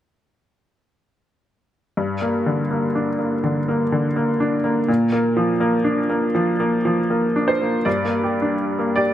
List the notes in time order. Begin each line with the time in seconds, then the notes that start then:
1.97 G2
2.22 A#3
2.46 D3
2.71 A#3
2.95 D4
3.19 A#3
3.44 D3
3.68 A#3
3.92 D3
4.16 A#3
4.40 D4
4.64 A#3
4.88 A#2
5.12 A#3
5.37 F3
5.60 A#3
5.84 D4
6.10 A#3
6.35 F3
6.60 A#3
6.85 F3
7.10 A#3
7.36 D4
7.48 C5
7.62 A#3
7.85 G2 D5
8.05 A#3
8.23 G4
8.42 D4
8.79 A#3
8.96 G4 D5